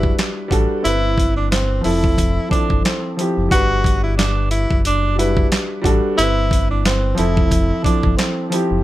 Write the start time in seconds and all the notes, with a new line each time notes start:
Already playing: F#1 G3 D4 E4 F#4 B4
0.03 kick
0.19 snare, clap, closed hi-hat
0.48 A1 G3 D4 F#4, kick, closed hi-hat
0.53 A4
0.83 G1 C4 E4, closed hi-hat
0.87 B4
1.18 kick, closed hi-hat
1.37 D4
1.51 C4, snare, clap, closed hi-hat
1.81 F3 C4 E4, open hi-hat
1.85 F1 A4
2.04 kick
2.18 kick, closed hi-hat
2.49 F3 C4 D4 E4, kick, closed hi-hat
2.54 A4
2.70 G1, kick
2.85 C4, snare, clap, closed hi-hat
3.17 F3 C4 E4, closed hi-hat
3.21 G4
3.38 F#1
3.49 G1 G3 D4 F#4, kick, closed hi-hat
3.54 B4
3.84 kick, closed hi-hat
4.03 E4
4.17 D4, snare, clap, closed hi-hat
4.51 E4, closed hi-hat
4.71 F#1, kick
4.85 D4, closed hi-hat
5.16 G3 D4 E4 F#4, closed hi-hat
5.20 B4
5.37 kick
5.52 snare, clap, closed hi-hat
5.82 A1 G3 D4 F#4, kick, closed hi-hat
5.86 A4
6.16 G1 C4 E4, closed hi-hat
6.21 B4
6.51 kick, closed hi-hat
6.71 D4
6.85 C4, snare, clap, closed hi-hat
7.15 F1 F3 C4 E4, closed hi-hat
7.19 A4
7.37 kick
7.51 kick, closed hi-hat
7.82 F3 C4 D4 E4, kick, closed hi-hat
7.87 A4
8.03 G1, kick
8.17 C4, snare, clap, closed hi-hat
8.50 F3 C4 E4, closed hi-hat
8.54 G4
8.71 F#1